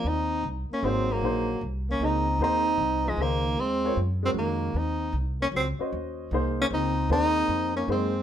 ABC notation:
X:1
M:3/4
L:1/8
Q:"Swing" 1/4=153
K:Ebdor
V:1 name="Grand piano"
z4 [B,EAc]2 | [B,EAc] z3 [B,EAe] z | [B,EAc] z3 [B,EAc] z | z [CFBd] z [A,DGB]3 |
z4 z [DGce]- | [DGce]2 [B,EAc]3 z | [B,EAc]3 z [B,EAc] z |]
V:2 name="Tenor saxophone"
E2 z D C B,- | B,2 z D E2 | E3 A, B,2 | C2 z C B,2 |
E2 z D C z | z3 D E2 | E3 D C2 |]
V:3 name="Trombone"
C2 z B, G, G,- | G,2 z B, C2 | C3 F, E,2 | A,2 z A, E,2 |
C2 z B, G, z | z3 B, C2 | C3 B, A,2 |]
V:4 name="Upright bass" clef=bass
E,,2 C,, z A,,,2 | B,,,2 C,,2 D,,2 | E,,2 C,,2 D,,2 | E,,2 G,,2 F,,2 |
E,,2 C,,2 D,, z | E,,2 C,,2 D,,2 | E,,2 F,,2 G,,2 |]